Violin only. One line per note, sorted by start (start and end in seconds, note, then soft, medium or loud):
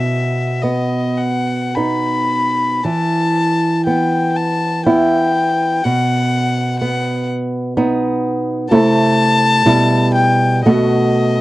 0.00 0.64 E5 medium
0.62 1.19 D#5 soft
1.17 1.77 F#5 medium
1.75 2.85 B5 medium
2.84 3.86 A5 medium
3.86 4.38 G5 medium
4.36 4.86 A5 medium
4.86 5.86 G5 medium
5.84 6.79 F#5 medium
6.80 7.27 F#5 medium
8.70 10.10 A5 loud
10.15 10.65 G5 medium
10.66 11.41 D#5 medium